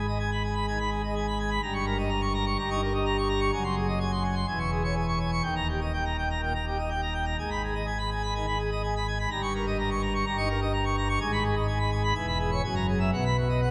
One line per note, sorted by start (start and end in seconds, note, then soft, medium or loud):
0.00 1.59 G#1 medium
0.00 1.59 G#2 medium
0.08 0.18 D#5 medium
0.20 0.30 G#5 medium
0.32 0.42 B5 medium
0.43 0.54 G#5 medium
0.55 0.66 B5 medium
0.68 0.78 D#3 medium
0.68 0.78 G#5 medium
0.79 0.90 B5 medium
0.91 1.01 G#4 medium
1.04 1.14 D#5 medium
1.16 1.26 G#5 medium
1.28 1.38 B5 medium
1.39 1.50 G#5 medium
1.51 1.61 B5 medium
1.63 2.57 G1 medium
1.63 2.57 G2 medium
1.63 1.73 A#5 medium
1.74 1.85 C#6 medium
1.86 1.97 A#4 medium
1.98 2.09 D#5 medium
2.10 2.21 A#5 medium
2.22 2.33 C#6 medium
2.34 2.45 A#5 medium
2.46 2.57 C#6 medium
2.59 3.51 G1 medium
2.59 3.51 G2 medium
2.59 2.69 A#5 medium
2.70 2.81 D#4 medium
2.70 2.81 C#6 medium
2.82 2.93 A#4 medium
2.95 3.05 D#5 medium
3.06 3.16 A#5 medium
3.18 3.28 C#6 medium
3.29 3.40 A#5 medium
3.41 3.51 C#6 medium
3.53 4.45 F#1 medium
3.53 4.45 F#2 loud
3.53 3.63 G#5 medium
3.64 3.75 C6 loud
3.76 3.87 G#4 medium
3.88 3.99 D#5 medium
4.00 4.11 G#5 medium
4.12 4.23 C6 medium
4.24 4.35 G#5 medium
4.36 4.46 C6 medium
4.48 5.41 E1 medium
4.48 5.41 E2 medium
4.48 4.59 G#5 medium
4.60 4.70 C#6 medium
4.72 4.83 G#4 medium
4.84 4.94 C#5 medium
4.95 5.06 G#5 medium
5.08 5.19 C#6 medium
5.20 5.31 G#5 medium
5.32 5.42 C#6 medium
5.44 7.35 D#1 medium
5.44 7.35 D#2 medium
5.44 5.55 G5 medium
5.56 5.67 A#5 medium
5.69 5.80 G4 medium
5.81 5.92 D#5 medium
5.94 6.04 G5 medium
6.06 6.16 A#5 medium
6.18 6.29 G5 medium
6.30 6.41 A#5 medium
6.43 6.53 A#2 medium
6.43 6.53 G5 medium
6.55 6.65 A#5 medium
6.67 6.77 G4 medium
6.79 6.89 D#5 medium
6.90 7.01 G5 medium
7.02 7.13 A#5 medium
7.14 7.25 G5 medium
7.26 7.36 A#5 medium
7.38 9.26 G#1 medium
7.38 9.26 G#2 medium
7.38 7.49 G#5 medium
7.51 7.62 B5 medium
7.63 7.74 G#4 medium
7.75 7.86 D#5 medium
7.87 7.98 G#5 medium
7.99 8.10 B5 medium
8.11 8.22 G#5 medium
8.23 8.34 B5 medium
8.35 8.46 D#3 medium
8.35 8.46 G#5 medium
8.47 8.58 B5 medium
8.59 8.70 G#4 medium
8.72 8.82 D#5 medium
8.84 8.94 G#5 medium
8.96 9.06 B5 medium
9.08 9.18 G#5 medium
9.19 9.29 B5 medium
9.30 10.24 G1 medium
9.30 10.24 G2 medium
9.30 9.42 A#5 medium
9.43 9.53 C#6 medium
9.55 9.66 A#4 medium
9.67 9.77 D#5 medium
9.79 9.89 A#5 medium
9.91 10.01 C#6 medium
10.02 10.13 A#5 medium
10.15 10.25 C#6 medium
10.26 11.18 G1 medium
10.26 11.18 G2 medium
10.26 10.37 A#5 medium
10.38 10.48 D#4 medium
10.38 10.48 C#6 medium
10.50 10.60 A#4 medium
10.62 10.72 D#5 medium
10.73 10.84 A#5 medium
10.85 10.96 C#6 medium
10.97 11.08 A#5 medium
11.09 11.19 C#6 medium
11.21 12.12 G#1 loud
11.21 12.12 G#2 loud
11.21 11.31 G#5 medium
11.32 11.43 B5 medium
11.44 11.55 G#4 medium
11.56 11.66 D#5 medium
11.68 11.78 G#5 medium
11.79 11.90 B5 medium
11.92 12.02 G#5 medium
12.04 12.14 B5 medium
12.15 12.62 E1 medium
12.15 12.62 E2 medium
12.15 12.26 G#5 medium
12.27 12.38 B5 medium
12.40 12.50 G#4 medium
12.52 12.62 C#5 medium
12.64 13.11 F#1 medium
12.64 13.11 F#2 medium
12.64 12.74 G#5 medium
12.76 12.86 A#5 medium
12.88 12.99 G#4 medium
13.00 13.10 E5 medium
13.12 13.71 B1 medium
13.12 13.71 B2 medium
13.12 13.23 F#5 medium
13.26 13.36 B5 medium
13.37 13.48 F#4 medium
13.49 13.60 D#5 medium
13.62 13.71 F#5 medium